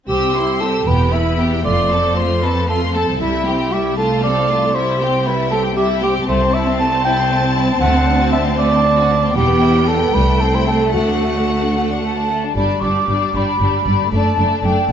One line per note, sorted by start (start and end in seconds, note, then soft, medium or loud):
0.09 0.58 C2 soft
0.09 0.83 C2 soft
0.09 0.33 C4 soft
0.09 0.62 G4 soft
0.09 0.34 G4 soft
0.09 0.34 E6 soft
0.35 0.61 E4 soft
0.35 0.61 C5 soft
0.35 0.62 C6 soft
0.61 0.87 C4 soft
0.61 0.86 G4 soft
0.61 0.89 A4 soft
0.61 0.87 E6 soft
0.87 1.35 E1 soft
0.87 1.65 E2 soft
0.87 1.11 B3 soft
0.87 1.11 G4 soft
0.87 1.14 B4 soft
0.87 1.12 G5 soft
1.13 1.39 E4 soft
1.13 1.39 B4 soft
1.13 1.64 E5 soft
1.13 1.39 B5 soft
1.39 1.65 B3 soft
1.39 1.65 G4 soft
1.39 1.65 G5 soft
1.64 2.13 F1 soft
1.64 3.21 F2 soft
1.64 1.90 A3 soft
1.64 1.89 F4 soft
1.64 2.16 D5 medium
1.64 1.89 C6 soft
1.91 2.17 C4 soft
1.91 2.17 A4 soft
1.91 2.17 A5 soft
2.17 2.43 A3 soft
2.17 2.43 F4 soft
2.17 2.45 C5 soft
2.17 2.43 C6 soft
2.43 2.69 C4 soft
2.43 2.69 A4 soft
2.43 2.69 B4 soft
2.43 2.69 A5 soft
2.68 2.93 A3 soft
2.68 2.93 F4 soft
2.68 2.81 A4 soft
2.68 2.93 C6 soft
2.95 3.21 C4 soft
2.95 3.21 A4 soft
2.95 3.07 A4 soft
2.95 3.21 A5 soft
3.20 3.69 C2 soft
3.20 6.24 C2 soft
3.20 3.45 G3 soft
3.20 3.45 E4 soft
3.20 3.74 E4 medium
3.20 3.44 E5 soft
3.46 3.72 C4 soft
3.46 3.72 G4 soft
3.46 3.72 G5 soft
3.72 3.98 G3 soft
3.72 3.98 E4 soft
3.72 3.97 G4 soft
3.72 3.98 E5 soft
3.97 4.22 A3 soft
3.97 4.22 F4 soft
3.97 4.23 A4 soft
3.97 4.22 A5 soft
4.24 4.50 C4 soft
4.24 4.50 A4 soft
4.24 4.77 D5 medium
4.24 4.50 F5 soft
4.49 4.75 A3 soft
4.49 4.75 F4 soft
4.49 4.75 A5 soft
4.75 4.99 G3 soft
4.75 4.99 E4 soft
4.75 5.28 C5 soft
4.75 4.99 E5 soft
5.01 5.26 C4 soft
5.01 5.26 G4 soft
5.01 5.26 G5 soft
5.26 5.52 G3 soft
5.26 5.52 E4 soft
5.26 5.51 B4 soft
5.26 5.52 E5 soft
5.51 5.77 C4 soft
5.51 5.77 G4 soft
5.51 5.63 A4 medium
5.51 5.77 G5 soft
5.77 6.01 G3 soft
5.77 6.01 E4 soft
5.77 5.88 G4 medium
5.77 6.01 E5 soft
6.02 6.27 C4 soft
6.02 6.28 G4 soft
6.02 6.14 G4 soft
6.02 6.28 G5 soft
6.28 6.76 C2 soft
6.28 7.78 C2 soft
6.28 6.40 A3 soft
6.28 9.31 C4 soft
6.28 6.56 C5 medium
6.28 9.32 A5 soft
6.42 6.54 C4 soft
6.54 6.67 E4 soft
6.54 6.79 E5 medium
6.68 6.80 C4 soft
6.80 6.93 A3 soft
6.80 7.04 A5 medium
6.93 7.06 C4 soft
7.05 7.19 E4 soft
7.05 7.54 G5 medium
7.19 7.31 C4 soft
7.32 7.44 A3 soft
7.45 7.57 C4 soft
7.57 7.69 E4 soft
7.70 7.82 C4 soft
7.81 9.32 D2 soft
7.81 8.29 D2 soft
7.81 7.94 A3 soft
7.81 8.29 F#5 medium
7.96 8.08 C4 soft
8.08 8.20 D4 soft
8.21 8.33 F#4 soft
8.32 8.46 D4 soft
8.32 8.44 E5 medium
8.46 8.59 C4 soft
8.58 8.71 A3 soft
8.58 9.34 D5 medium
8.71 8.84 C4 soft
8.85 8.97 D4 soft
8.98 9.10 F#4 soft
9.11 9.23 D4 soft
9.24 9.36 C4 soft
9.35 9.84 E1 soft
9.35 10.12 E2 soft
9.35 9.48 G3 soft
9.35 10.14 B3 soft
9.35 9.90 G4 medium
9.35 10.91 G5 soft
9.49 9.62 B3 soft
9.61 9.74 E4 soft
9.75 9.88 B3 soft
9.88 10.01 G3 soft
9.88 10.16 A4 medium
10.02 10.15 B3 soft
10.14 10.64 C2 soft
10.14 10.93 C2 soft
10.14 10.27 G3 soft
10.14 12.36 A3 soft
10.14 10.42 B4 medium
10.29 10.41 A3 soft
10.41 10.55 C4 soft
10.41 10.56 A4 soft
10.55 10.68 E4 soft
10.55 10.67 C5 soft
10.67 10.81 C4 soft
10.67 10.93 A4 soft
10.81 10.94 A3 soft
10.94 11.45 D2 soft
10.94 12.36 D2 soft
10.94 11.07 A3 soft
10.94 12.27 F#4 medium
10.94 12.33 F#5 soft
11.09 11.22 D4 soft
11.23 11.36 A3 soft
11.36 11.49 D4 soft
11.49 11.62 A3 soft
11.63 11.76 D4 soft
11.76 11.90 A3 soft
11.76 11.82 F#5 soft
11.90 12.03 D4 soft
12.03 12.16 A3 soft
12.03 12.56 A5 soft
12.17 12.30 D4 soft
12.31 12.44 A3 soft
12.44 12.56 D4 soft
12.56 12.64 G1 soft
12.56 12.64 G2 soft
12.56 12.82 G3 soft
12.56 12.82 D4 soft
12.56 12.81 D5 soft
12.56 12.82 B5 soft
12.81 12.91 G1 soft
12.81 12.91 G2 soft
12.81 13.07 G3 soft
12.81 13.08 D4 soft
12.81 13.07 D5 soft
12.81 13.34 D6 soft
13.08 13.17 G1 soft
13.08 13.17 G2 soft
13.08 13.34 G3 soft
13.08 13.33 D4 soft
13.08 13.34 D5 soft
13.35 13.43 G1 soft
13.35 13.43 G2 soft
13.35 13.59 G3 soft
13.35 13.60 D4 soft
13.35 13.60 D5 soft
13.35 14.13 B5 soft
13.60 13.69 G1 soft
13.60 13.69 G2 soft
13.60 13.85 G3 soft
13.60 13.85 D4 soft
13.60 13.85 D5 soft
13.86 13.94 G1 soft
13.86 13.94 G2 soft
13.86 14.11 G3 soft
13.86 14.12 D4 soft
13.86 14.11 D5 soft
14.11 14.20 F#1 soft
14.11 14.20 F#2 soft
14.11 14.36 A3 soft
14.11 14.37 D4 soft
14.11 14.37 D5 soft
14.11 14.63 A5 soft
14.37 14.46 F#1 soft
14.37 14.45 F#2 soft
14.37 14.62 A3 soft
14.37 14.63 D4 soft
14.37 14.62 D5 soft
14.63 14.71 F#1 soft
14.63 14.71 F#2 soft
14.63 14.88 A3 soft
14.63 14.89 D4 soft
14.63 14.89 D5 soft
14.63 14.90 G5 soft